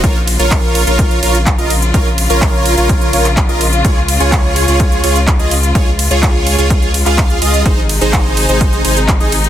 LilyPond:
<<
  \new Staff \with { instrumentName = "Supersaw synth" } { \time 4/4 \key bes \minor \tempo 4 = 126 <f' bes' des''>16 r8 <f' bes' des''>4 <f' bes' des''>8. <f' bes' des''>16 r8 <f' bes' ees''>16 r8 | <f' bes' des''>16 r8 <f' bes' des''>4 <f' bes' des''>8. <f' bes' des''>16 r8 <f' bes' ees''>16 r8 | <f' aes' des''>16 r8 <f' aes' des''>4 <f' aes' des''>8. <f' aes' des''>16 r8 <f' aes' ees''>16 r8 | <f' aes' des''>16 r8 <f' aes' des''>4 <f' aes' des''>8. r16 <f' aes' f''>8. <f' aes' ees''>8 |
<ees' aes' c''>16 r8 <ees' aes' c''>4 <ees' aes' c''>8. <ees' aes' c''>16 r8 <ees' aes' ees''>16 r8 | }
  \new Staff \with { instrumentName = "String section" } { \time 4/4 \key bes \minor << { <des f'>1~ | <des f'>1~ | <des f'>1~ | <des f'>1 |
<c ees'>1 | } \\ { bes1 | r1 | aes1~ | aes1~ |
aes1 | } >> }
  \new Staff \with { instrumentName = "Sub bass" } { \clef bass \time 4/4 \key bes \minor bes,,8. bes,,4 bes,,8. bes,,8. bes,,8. | bes,,8. bes,,4 bes,,8. bes,,8. bes,,8. | des,8. des,4 des,8. des,8. des,8. | des,8. des,4 des,4 des,8. des,8 |
aes,,8. aes,,4 aes,,8. aes,,8. aes,,8. | }
  \new DrumStaff \with { instrumentName = "Drums" } \drummode { \time 4/4 <hh bd cymr>8 <hho cymr>16 hh16 <hc hh bd cymr>8 <hho cymr>16 hh16 <hh bd cymr>16 hh16 <hho cymr>16 hh16 <hc hh bd cymr>16 hh16 <hho cymr>16 hh16 | <hh bd cymr>8 <hho cymr>16 hh16 <hc hh bd cymr>8 <hho cymr>16 hh16 <hh bd cymr>16 hh16 <hho cymr>16 <hc hh>16 <hc hh bd cymr>16 hh16 <hho cymr>16 hh16 | <hh bd cymr>8 <hho cymr>16 hh16 <hc hh bd cymr>8 <hho cymr>16 hh16 <hh bd cymr>16 hh16 <hho cymr>16 hh16 <hc hh bd cymr>16 hh16 <hho cymr>16 hh16 | <hh bd cymr>8 <hho cymr>16 hh16 <hc hh bd cymr>8 <hho cymr>16 hh16 <hh bd cymr>16 hh16 <hho cymr>16 <hc hh>16 <hc hh bd cymr>16 hh16 <hho cymr>16 hh16 |
<hh bd cymr>8 <hho cymr>16 hh16 <hc hh bd cymr>8 <hho cymr>16 hh16 <hh bd cymr>16 hh16 <hho cymr>16 hh16 <hc hh bd cymr>16 hh16 <hho cymr>16 hh16 | }
>>